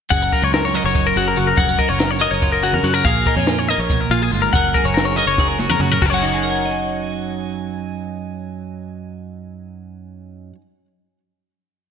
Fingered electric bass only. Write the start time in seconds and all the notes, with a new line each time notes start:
0.11 F#1
0.42 C#2
0.84 F#1
1.16 F#1
1.38 F#1
1.58 F1
1.90 F#1
2.31 F#1
2.73 F#2
2.83 F#2
3.05 A#1
3.36 F2
3.78 A#1
4.10 A#1
4.31 G1
4.54 F#1
4.84 F#1
5.26 F#1
5.69 F#2
5.80 F#2
6.02 F#1